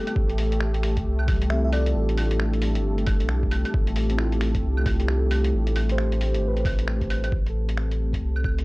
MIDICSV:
0, 0, Header, 1, 6, 480
1, 0, Start_track
1, 0, Tempo, 447761
1, 174, Time_signature, 4, 2, 24, 8
1, 9269, End_track
2, 0, Start_track
2, 0, Title_t, "FM electric piano"
2, 0, Program_c, 0, 5
2, 1609, Note_on_c, 0, 76, 86
2, 1705, Note_off_c, 0, 76, 0
2, 1763, Note_on_c, 0, 76, 76
2, 1822, Note_off_c, 0, 76, 0
2, 1854, Note_on_c, 0, 74, 94
2, 2240, Note_off_c, 0, 74, 0
2, 9269, End_track
3, 0, Start_track
3, 0, Title_t, "Analog synth pad"
3, 0, Program_c, 1, 89
3, 0, Note_on_c, 1, 57, 78
3, 0, Note_on_c, 1, 67, 73
3, 0, Note_on_c, 1, 69, 88
3, 0, Note_on_c, 1, 71, 75
3, 134, Note_off_c, 1, 71, 0
3, 7814, Note_off_c, 1, 69, 0
3, 7815, Note_off_c, 1, 67, 0
3, 7816, Note_off_c, 1, 57, 0
3, 7844, Note_on_c, 1, 67, 72
3, 7849, Note_on_c, 1, 60, 86
3, 7849, Note_on_c, 1, 69, 70
3, 7850, Note_on_c, 1, 57, 80
3, 9269, Note_off_c, 1, 57, 0
3, 9269, Note_off_c, 1, 60, 0
3, 9269, Note_off_c, 1, 67, 0
3, 9269, Note_off_c, 1, 69, 0
3, 9269, End_track
4, 0, Start_track
4, 0, Title_t, "Synth keys"
4, 0, Program_c, 2, 88
4, 0, Control_c, 2, 64, 127
4, 0, Note_on_c, 2, 50, 59
4, 188, Control_c, 2, 64, 0
4, 193, Note_off_c, 2, 50, 0
4, 377, Control_c, 2, 64, 127
4, 1347, Note_on_c, 2, 52, 58
4, 1401, Note_on_c, 2, 55, 53
4, 1452, Note_on_c, 2, 57, 55
4, 1636, Note_on_c, 2, 60, 63
4, 1691, Note_on_c, 2, 64, 55
4, 1742, Note_on_c, 2, 65, 56
4, 1805, Note_off_c, 2, 52, 0
4, 1834, Note_off_c, 2, 55, 0
4, 1861, Note_off_c, 2, 57, 0
4, 2106, Note_off_c, 2, 60, 0
4, 2135, Note_off_c, 2, 64, 0
4, 2162, Note_off_c, 2, 65, 0
4, 2297, Note_on_c, 2, 62, 66
4, 2352, Note_on_c, 2, 65, 54
4, 2756, Note_off_c, 2, 62, 0
4, 2786, Note_off_c, 2, 65, 0
4, 4414, Note_on_c, 2, 60, 65
4, 4468, Note_on_c, 2, 64, 55
4, 4522, Note_on_c, 2, 65, 57
4, 4876, Note_off_c, 2, 60, 0
4, 4905, Note_off_c, 2, 64, 0
4, 4933, Note_off_c, 2, 65, 0
4, 5350, Note_on_c, 2, 67, 78
4, 5814, Note_off_c, 2, 67, 0
4, 6344, Note_on_c, 2, 72, 81
4, 6806, Note_off_c, 2, 72, 0
4, 6945, Note_on_c, 2, 71, 72
4, 7417, Note_off_c, 2, 71, 0
4, 7867, Control_c, 2, 64, 0
4, 8032, Note_on_c, 2, 69, 60
4, 8065, Control_c, 2, 64, 127
4, 8496, Note_off_c, 2, 69, 0
4, 9269, End_track
5, 0, Start_track
5, 0, Title_t, "Sub bass"
5, 0, Program_c, 3, 38
5, 172, Note_on_c, 3, 33, 102
5, 1121, Note_off_c, 3, 33, 0
5, 1133, Note_on_c, 3, 36, 85
5, 2082, Note_off_c, 3, 36, 0
5, 2100, Note_on_c, 3, 33, 98
5, 2963, Note_on_c, 3, 31, 94
5, 2979, Note_off_c, 3, 33, 0
5, 3441, Note_on_c, 3, 35, 95
5, 3457, Note_off_c, 3, 31, 0
5, 3902, Note_off_c, 3, 35, 0
5, 4011, Note_on_c, 3, 33, 98
5, 4960, Note_off_c, 3, 33, 0
5, 4972, Note_on_c, 3, 36, 87
5, 5921, Note_off_c, 3, 36, 0
5, 5937, Note_on_c, 3, 33, 103
5, 6801, Note_on_c, 3, 31, 96
5, 6817, Note_off_c, 3, 33, 0
5, 6891, Note_on_c, 3, 33, 79
5, 6907, Note_off_c, 3, 31, 0
5, 7841, Note_off_c, 3, 33, 0
5, 7852, Note_on_c, 3, 33, 94
5, 8801, Note_off_c, 3, 33, 0
5, 8814, Note_on_c, 3, 36, 80
5, 9269, Note_off_c, 3, 36, 0
5, 9269, End_track
6, 0, Start_track
6, 0, Title_t, "Drums"
6, 76, Note_on_c, 9, 42, 57
6, 76, Note_on_c, 9, 75, 52
6, 172, Note_on_c, 9, 36, 114
6, 183, Note_off_c, 9, 42, 0
6, 183, Note_off_c, 9, 75, 0
6, 279, Note_off_c, 9, 36, 0
6, 317, Note_on_c, 9, 42, 44
6, 408, Note_on_c, 9, 46, 74
6, 424, Note_off_c, 9, 42, 0
6, 516, Note_off_c, 9, 46, 0
6, 559, Note_on_c, 9, 42, 53
6, 649, Note_on_c, 9, 26, 105
6, 666, Note_off_c, 9, 42, 0
6, 756, Note_off_c, 9, 26, 0
6, 796, Note_on_c, 9, 42, 44
6, 893, Note_on_c, 9, 26, 60
6, 893, Note_on_c, 9, 46, 67
6, 904, Note_off_c, 9, 42, 0
6, 1000, Note_off_c, 9, 26, 0
6, 1000, Note_off_c, 9, 46, 0
6, 1038, Note_on_c, 9, 42, 53
6, 1040, Note_on_c, 9, 36, 62
6, 1145, Note_off_c, 9, 42, 0
6, 1147, Note_off_c, 9, 36, 0
6, 1275, Note_on_c, 9, 75, 49
6, 1371, Note_off_c, 9, 75, 0
6, 1371, Note_on_c, 9, 46, 73
6, 1371, Note_on_c, 9, 75, 60
6, 1373, Note_on_c, 9, 36, 109
6, 1479, Note_off_c, 9, 46, 0
6, 1479, Note_off_c, 9, 75, 0
6, 1480, Note_off_c, 9, 36, 0
6, 1518, Note_on_c, 9, 42, 55
6, 1609, Note_on_c, 9, 26, 102
6, 1625, Note_off_c, 9, 42, 0
6, 1716, Note_off_c, 9, 26, 0
6, 1849, Note_on_c, 9, 46, 65
6, 1849, Note_on_c, 9, 75, 58
6, 1956, Note_off_c, 9, 46, 0
6, 1956, Note_off_c, 9, 75, 0
6, 1997, Note_on_c, 9, 42, 54
6, 2104, Note_off_c, 9, 42, 0
6, 2240, Note_on_c, 9, 42, 44
6, 2331, Note_on_c, 9, 46, 80
6, 2331, Note_on_c, 9, 75, 52
6, 2347, Note_off_c, 9, 42, 0
6, 2438, Note_off_c, 9, 46, 0
6, 2438, Note_off_c, 9, 75, 0
6, 2476, Note_on_c, 9, 42, 52
6, 2569, Note_on_c, 9, 26, 102
6, 2583, Note_off_c, 9, 42, 0
6, 2676, Note_off_c, 9, 26, 0
6, 2717, Note_on_c, 9, 42, 44
6, 2806, Note_on_c, 9, 46, 70
6, 2825, Note_off_c, 9, 42, 0
6, 2913, Note_off_c, 9, 46, 0
6, 2952, Note_on_c, 9, 42, 55
6, 3059, Note_off_c, 9, 42, 0
6, 3195, Note_on_c, 9, 42, 30
6, 3286, Note_on_c, 9, 46, 76
6, 3286, Note_on_c, 9, 75, 63
6, 3292, Note_on_c, 9, 36, 100
6, 3302, Note_off_c, 9, 42, 0
6, 3393, Note_off_c, 9, 46, 0
6, 3393, Note_off_c, 9, 75, 0
6, 3399, Note_off_c, 9, 36, 0
6, 3433, Note_on_c, 9, 42, 56
6, 3525, Note_on_c, 9, 26, 102
6, 3540, Note_off_c, 9, 42, 0
6, 3632, Note_off_c, 9, 26, 0
6, 3678, Note_on_c, 9, 36, 60
6, 3767, Note_on_c, 9, 46, 67
6, 3767, Note_on_c, 9, 75, 62
6, 3785, Note_off_c, 9, 36, 0
6, 3874, Note_off_c, 9, 46, 0
6, 3874, Note_off_c, 9, 75, 0
6, 3915, Note_on_c, 9, 42, 53
6, 3915, Note_on_c, 9, 75, 54
6, 4010, Note_on_c, 9, 36, 112
6, 4022, Note_off_c, 9, 42, 0
6, 4022, Note_off_c, 9, 75, 0
6, 4117, Note_off_c, 9, 36, 0
6, 4151, Note_on_c, 9, 42, 45
6, 4244, Note_on_c, 9, 46, 77
6, 4258, Note_off_c, 9, 42, 0
6, 4351, Note_off_c, 9, 46, 0
6, 4393, Note_on_c, 9, 42, 55
6, 4487, Note_on_c, 9, 26, 102
6, 4500, Note_off_c, 9, 42, 0
6, 4594, Note_off_c, 9, 26, 0
6, 4635, Note_on_c, 9, 42, 47
6, 4727, Note_on_c, 9, 26, 57
6, 4727, Note_on_c, 9, 46, 69
6, 4742, Note_off_c, 9, 42, 0
6, 4835, Note_off_c, 9, 26, 0
6, 4835, Note_off_c, 9, 46, 0
6, 4874, Note_on_c, 9, 36, 59
6, 4875, Note_on_c, 9, 42, 54
6, 4982, Note_off_c, 9, 36, 0
6, 4982, Note_off_c, 9, 42, 0
6, 5117, Note_on_c, 9, 75, 54
6, 5209, Note_on_c, 9, 36, 101
6, 5211, Note_off_c, 9, 75, 0
6, 5211, Note_on_c, 9, 46, 76
6, 5211, Note_on_c, 9, 75, 67
6, 5316, Note_off_c, 9, 36, 0
6, 5318, Note_off_c, 9, 46, 0
6, 5318, Note_off_c, 9, 75, 0
6, 5358, Note_on_c, 9, 42, 56
6, 5450, Note_on_c, 9, 26, 95
6, 5465, Note_off_c, 9, 42, 0
6, 5558, Note_off_c, 9, 26, 0
6, 5692, Note_on_c, 9, 46, 71
6, 5692, Note_on_c, 9, 75, 65
6, 5799, Note_off_c, 9, 46, 0
6, 5799, Note_off_c, 9, 75, 0
6, 5836, Note_on_c, 9, 42, 57
6, 5943, Note_off_c, 9, 42, 0
6, 6077, Note_on_c, 9, 42, 46
6, 6171, Note_on_c, 9, 46, 75
6, 6171, Note_on_c, 9, 75, 56
6, 6184, Note_off_c, 9, 42, 0
6, 6278, Note_off_c, 9, 46, 0
6, 6278, Note_off_c, 9, 75, 0
6, 6319, Note_on_c, 9, 42, 58
6, 6414, Note_on_c, 9, 26, 104
6, 6426, Note_off_c, 9, 42, 0
6, 6521, Note_off_c, 9, 26, 0
6, 6562, Note_on_c, 9, 42, 45
6, 6656, Note_on_c, 9, 46, 66
6, 6669, Note_off_c, 9, 42, 0
6, 6764, Note_off_c, 9, 46, 0
6, 6802, Note_on_c, 9, 42, 55
6, 6909, Note_off_c, 9, 42, 0
6, 7039, Note_on_c, 9, 42, 30
6, 7129, Note_on_c, 9, 36, 107
6, 7135, Note_on_c, 9, 46, 72
6, 7135, Note_on_c, 9, 75, 71
6, 7146, Note_off_c, 9, 42, 0
6, 7236, Note_off_c, 9, 36, 0
6, 7242, Note_off_c, 9, 46, 0
6, 7242, Note_off_c, 9, 75, 0
6, 7276, Note_on_c, 9, 42, 57
6, 7371, Note_on_c, 9, 26, 103
6, 7383, Note_off_c, 9, 42, 0
6, 7479, Note_off_c, 9, 26, 0
6, 7516, Note_on_c, 9, 36, 60
6, 7520, Note_on_c, 9, 42, 31
6, 7614, Note_on_c, 9, 46, 68
6, 7614, Note_on_c, 9, 75, 68
6, 7623, Note_off_c, 9, 36, 0
6, 7627, Note_off_c, 9, 42, 0
6, 7721, Note_off_c, 9, 46, 0
6, 7721, Note_off_c, 9, 75, 0
6, 7760, Note_on_c, 9, 42, 59
6, 7760, Note_on_c, 9, 75, 58
6, 7849, Note_on_c, 9, 36, 108
6, 7867, Note_off_c, 9, 42, 0
6, 7867, Note_off_c, 9, 75, 0
6, 7956, Note_off_c, 9, 36, 0
6, 8002, Note_on_c, 9, 42, 30
6, 8109, Note_off_c, 9, 42, 0
6, 8241, Note_on_c, 9, 42, 53
6, 8334, Note_on_c, 9, 26, 99
6, 8349, Note_off_c, 9, 42, 0
6, 8441, Note_off_c, 9, 26, 0
6, 8484, Note_on_c, 9, 42, 32
6, 8591, Note_off_c, 9, 42, 0
6, 8717, Note_on_c, 9, 36, 57
6, 8726, Note_on_c, 9, 42, 57
6, 8824, Note_off_c, 9, 36, 0
6, 8833, Note_off_c, 9, 42, 0
6, 8961, Note_on_c, 9, 75, 50
6, 9051, Note_on_c, 9, 36, 96
6, 9054, Note_off_c, 9, 75, 0
6, 9054, Note_on_c, 9, 75, 64
6, 9159, Note_off_c, 9, 36, 0
6, 9162, Note_off_c, 9, 75, 0
6, 9203, Note_on_c, 9, 42, 56
6, 9269, Note_off_c, 9, 42, 0
6, 9269, End_track
0, 0, End_of_file